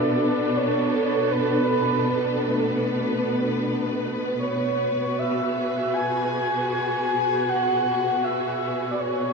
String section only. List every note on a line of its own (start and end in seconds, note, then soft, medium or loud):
0.00 9.33 B2 medium
0.00 9.33 B3 medium
0.00 4.39 D4 medium
0.00 0.71 F#4 medium
0.00 4.39 A4 medium
0.00 9.33 B4 medium
4.52 9.33 F#4 medium
5.30 9.33 G#4 medium